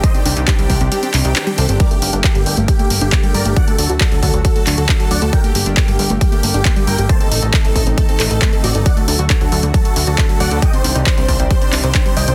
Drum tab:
HH |xxoxxxoxxxoxxxox|xxoxxxoxxxoxxxox|xxoxxxoxxxoxxxox|xxoxxxoxxxoxxxox|
CP |----x-----x-x---|----x-------x---|----x-----x-x---|----x-------x---|
BD |o---o-o---------|o---o---o---o---|o---o-o-o---o---|o---o---o---o---|

HH |xxoxxxoxxxoxxxox|xxoxxxoxxxoxxxox|xxoxxxoxxxoxxxox|
CP |----x-----x-x---|----x-------x---|----x-----x-x---|
BD |o---o-o-o---o---|o---o---o---o---|o---o-o-o---o---|